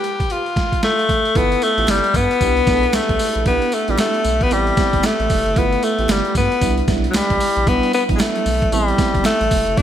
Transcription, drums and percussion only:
0.04 closed hi-hat medium
0.20 kick medium
0.20 closed hi-hat soft
0.30 closed hi-hat medium
0.46 closed hi-hat soft
0.56 kick loud
0.56 snare medium
0.56 closed hi-hat medium
0.72 kick medium
0.72 closed hi-hat soft
0.83 snare loud
0.83 closed hi-hat medium
0.99 closed hi-hat medium
1.09 kick medium
1.09 closed hi-hat medium
1.25 closed hi-hat soft
1.35 kick loud
1.35 closed hi-hat medium
1.52 closed hi-hat medium
1.62 closed hi-hat medium
1.62 tambourine medium
1.78 closed hi-hat medium
1.88 snare loud
1.88 clap medium
1.88 closed hi-hat medium
1.88 tambourine loud
2.04 closed hi-hat medium
2.14 kick loud
2.14 closed hi-hat medium
2.14 tambourine medium
2.31 closed hi-hat medium
2.41 kick loud
2.41 closed hi-hat medium
2.41 tambourine medium
2.57 closed hi-hat soft
2.67 kick loud
2.67 snare medium
2.67 closed hi-hat medium
2.67 tambourine medium
2.83 closed hi-hat medium
2.93 snare loud
2.93 clap loud
2.93 closed hi-hat medium
2.93 tambourine medium
3.09 kick loud
3.09 closed hi-hat medium
3.19 open hi-hat medium
3.19 tambourine medium
3.36 closed hi-hat soft
3.46 kick loud
3.46 closed hi-hat medium
3.62 closed hi-hat medium
3.72 closed hi-hat medium
3.72 tambourine medium
3.88 closed hi-hat medium
3.98 snare loud
3.98 clap medium
3.98 closed hi-hat medium
3.98 tambourine medium
4.14 closed hi-hat medium
4.24 closed hi-hat medium
4.24 tambourine medium
4.41 kick medium
4.41 closed hi-hat medium
4.51 closed hi-hat medium
4.51 tambourine medium
4.67 closed hi-hat soft
4.77 kick loud
4.77 snare medium
4.77 closed hi-hat medium
4.77 tambourine medium
4.93 kick medium
4.93 closed hi-hat medium
5.03 snare loud
5.03 clap medium
5.03 closed hi-hat medium
5.03 tambourine medium
5.20 closed hi-hat medium
5.30 kick loud
5.30 open hi-hat medium
5.30 tambourine medium
5.46 closed hi-hat soft
5.56 kick loud
5.56 closed hi-hat medium
5.72 closed hi-hat medium
5.83 closed hi-hat medium
5.83 tambourine medium
5.99 closed hi-hat medium
6.09 snare loud
6.09 clap loud
6.09 closed hi-hat medium
6.09 tambourine loud
6.25 closed hi-hat medium
6.35 kick loud
6.35 closed hi-hat medium
6.35 tambourine medium
6.52 closed hi-hat medium
6.61 kick loud
6.61 closed hi-hat medium
6.61 tambourine medium
6.78 closed hi-hat soft
6.88 kick loud
6.88 snare medium
6.88 closed hi-hat medium
6.88 tambourine medium
7.04 closed hi-hat medium
7.14 snare loud
7.14 clap loud
7.14 closed hi-hat medium
7.14 tambourine medium
7.30 kick medium
7.30 closed hi-hat medium
7.40 open hi-hat medium
7.40 tambourine medium
7.57 closed hi-hat medium
7.67 kick loud
7.67 closed hi-hat loud
7.83 closed hi-hat medium
7.93 closed hi-hat medium
7.93 tambourine medium
8.09 kick medium
8.09 closed hi-hat medium
8.19 snare loud
8.19 clap loud
8.19 closed hi-hat medium
8.19 tambourine loud
8.36 closed hi-hat medium
8.46 open hi-hat medium
8.46 tambourine medium
8.62 kick medium
8.62 closed hi-hat medium
8.72 closed hi-hat medium
8.72 tambourine medium
8.88 closed hi-hat soft
8.98 kick loud
8.98 snare medium
8.98 closed hi-hat medium
8.98 tambourine medium
9.14 kick medium
9.14 closed hi-hat soft
9.25 snare loud
9.25 clap loud
9.25 closed hi-hat medium
9.25 tambourine medium
9.41 closed hi-hat medium
9.51 kick loud
9.51 open hi-hat medium
9.51 tambourine medium
9.67 closed hi-hat medium
9.77 kick loud
9.77 closed hi-hat medium

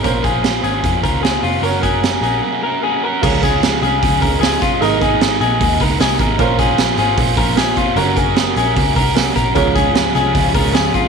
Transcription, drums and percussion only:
0.04 kick loud
0.04 closed hi-hat medium
0.24 kick medium
0.24 closed hi-hat medium
0.44 snare loud
0.44 closed hi-hat medium
0.64 closed hi-hat medium
0.84 kick loud
0.84 closed hi-hat medium
1.04 kick medium
1.04 closed hi-hat medium
1.25 snare loud
1.25 closed hi-hat medium
1.44 open hi-hat medium
1.63 closed hi-hat medium
1.83 kick medium
1.83 closed hi-hat medium
2.03 snare loud
2.03 closed hi-hat medium
2.23 closed hi-hat medium
3.23 kick loud
3.23 crash medium
3.43 kick loud
3.43 hi-hat pedal medium
3.43 open hi-hat medium
3.63 snare loud
3.63 hi-hat pedal medium
3.63 open hi-hat medium
3.83 hi-hat pedal medium
3.83 open hi-hat medium
4.03 kick loud
4.03 hi-hat pedal medium
4.03 open hi-hat loud
4.22 kick medium
4.22 hi-hat pedal medium
4.22 open hi-hat medium
4.43 snare loud
4.43 hi-hat pedal medium
4.43 open hi-hat medium
4.62 kick loud
4.62 hi-hat pedal medium
4.62 open hi-hat medium
4.82 hi-hat pedal medium
4.82 open hi-hat medium
5.02 kick medium
5.02 hi-hat pedal medium
5.02 open hi-hat medium
5.21 snare loud
5.21 hi-hat pedal medium
5.21 open hi-hat medium
5.41 hi-hat pedal medium
5.41 open hi-hat medium
5.61 kick loud
5.61 hi-hat pedal medium
5.61 open hi-hat loud
5.80 kick medium
5.80 hi-hat pedal medium
5.80 open hi-hat medium
6.00 snare loud
6.00 hi-hat pedal medium
6.00 open hi-hat loud
6.19 kick loud
6.19 hi-hat pedal medium
6.19 open hi-hat medium
6.39 kick loud
6.39 hi-hat pedal medium
6.39 open hi-hat loud
6.59 kick loud
6.59 hi-hat pedal medium
6.59 open hi-hat medium
6.78 snare loud
6.78 hi-hat pedal medium
6.78 open hi-hat medium
6.97 hi-hat pedal medium
6.97 open hi-hat medium
7.17 kick loud
7.17 hi-hat pedal medium
7.17 open hi-hat loud
7.37 kick medium
7.37 hi-hat pedal medium
7.37 open hi-hat medium
7.57 snare loud
7.57 hi-hat pedal medium
7.57 open hi-hat medium
7.76 kick medium
7.76 hi-hat pedal medium
7.76 open hi-hat medium
7.96 hi-hat pedal medium
7.96 open hi-hat loud
8.16 kick medium
8.16 hi-hat pedal medium
8.16 open hi-hat medium
8.36 snare loud
8.36 hi-hat pedal medium
8.36 open hi-hat medium
8.56 hi-hat pedal medium
8.56 open hi-hat medium
8.76 kick loud
8.76 hi-hat pedal medium
8.76 open hi-hat medium
8.96 kick medium
8.96 hi-hat pedal medium
8.96 open hi-hat medium
9.16 snare loud
9.16 hi-hat pedal medium
9.16 open hi-hat medium
9.35 kick medium
9.35 hi-hat pedal medium
9.35 open hi-hat medium
9.55 kick loud
9.55 hi-hat pedal medium
9.55 open hi-hat medium
9.75 kick medium
9.75 hi-hat pedal medium
9.75 open hi-hat medium
9.95 snare loud
9.95 hi-hat pedal medium
9.95 open hi-hat medium
10.15 hi-hat pedal medium
10.15 open hi-hat medium
10.35 kick loud
10.35 hi-hat pedal medium
10.35 open hi-hat loud
10.55 kick medium
10.55 hi-hat pedal medium
10.55 open hi-hat medium
10.74 snare loud
10.74 hi-hat pedal medium
10.74 open hi-hat medium
10.94 kick medium
10.94 hi-hat pedal medium
10.94 open hi-hat medium

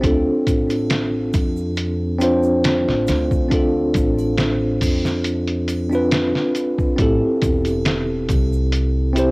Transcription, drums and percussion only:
0.03 kick loud
0.03 closed hi-hat medium
0.03 shaker soft
0.47 kick medium
0.47 closed hi-hat medium
0.47 shaker medium
0.70 closed hi-hat soft
0.70 triangle medium
0.70 shaker soft
0.90 snare loud
0.90 closed hi-hat medium
0.90 shaker soft
1.33 kick medium
1.33 closed hi-hat medium
1.33 triangle medium
1.33 shaker medium
1.57 shaker soft
1.77 closed hi-hat medium
1.77 shaker soft
2.21 closed hi-hat medium
2.21 shaker medium
2.43 shaker medium
2.64 snare loud
2.64 closed hi-hat medium
2.64 shaker soft
2.89 snare soft
3.07 snare soft
3.07 closed hi-hat medium
3.07 triangle medium
3.07 shaker loud
3.31 kick medium
3.31 shaker soft
3.51 kick loud
3.51 closed hi-hat medium
3.51 shaker soft
3.94 kick medium
3.94 closed hi-hat medium
3.94 shaker medium
4.19 triangle medium
4.19 shaker medium
4.38 snare loud
4.38 closed hi-hat medium
4.38 shaker soft
4.81 kick medium
4.81 open hi-hat medium
4.81 triangle medium
4.81 shaker medium
5.05 snare soft
5.05 shaker medium
5.24 closed hi-hat medium
5.24 shaker soft
5.48 closed hi-hat soft
5.68 closed hi-hat medium
5.68 triangle medium
5.68 shaker medium
5.92 shaker medium
6.11 snare loud
6.11 closed hi-hat medium
6.11 shaker soft
6.35 snare soft
6.55 closed hi-hat medium
6.55 shaker medium
6.78 kick medium
6.78 shaker soft
6.98 kick loud
6.98 closed hi-hat medium
6.98 shaker soft
7.42 kick medium
7.42 closed hi-hat medium
7.42 shaker medium
7.65 closed hi-hat soft
7.65 triangle medium
7.65 shaker soft
7.85 snare loud
7.85 closed hi-hat medium
7.85 shaker soft
8.29 kick medium
8.29 closed hi-hat medium
8.29 triangle medium
8.29 shaker medium
8.53 shaker medium
8.72 closed hi-hat medium
8.72 shaker soft
9.16 closed hi-hat medium
9.16 shaker medium

